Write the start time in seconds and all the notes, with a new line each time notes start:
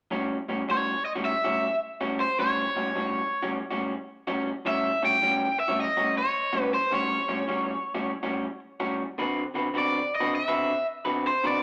0.11 A2 G3 C#4 F#4
0.48 A2 G3 C#4 F#4
0.68 A2 G3 C#4 F#4 C#5
1.05 D#5
1.16 A2 G3 C#4 F#4
1.25 E5
1.44 A2 G3 C#4 F#4
2.01 A2 G3 C#4 F#4
2.20 C5
2.39 A2 G3 C#4 F#4 C#5
2.76 A2 G3 C#4 F#4
2.95 A2 G3 C#4 F#4
3.42 A2 G3 C#4 F#4
3.71 A2 G3 C#4 F#4
4.27 A2 G3 C#4 F#4
4.65 A2 G3 C#4 F#4 E5
5.02 A2 G3 C#4 F#4 G5
5.22 A2 G3 C#4 F#4
5.60 E5
5.68 A2 G3 C#4 F#4
5.80 D#5
5.97 A2 G3 C#4 F#4
6.18 C#5
6.53 A2 G3 C#4 F#4
6.63 B4
6.74 C5
6.91 A2 G3 C#4 F#4 C#5
7.28 A2 G3 C#4 F#4
7.47 A2 G3 C#4 F#4
7.95 A2 G3 C#4 F#4
8.23 A2 G3 C#4 F#4
8.80 A2 G3 C#4 F#4
9.18 D3 C4 F#4 B4
9.54 D3 C4 F#4 B4
9.74 D3 C4 F#4 B4
9.78 D5
10.15 D#5
10.20 D3 C4 F#4 B4
10.35 E5
10.48 D3 C4 F#4 B4
11.05 D3 C4 F#4 B4
11.27 C5
11.44 D3 C4 F#4 B4 D5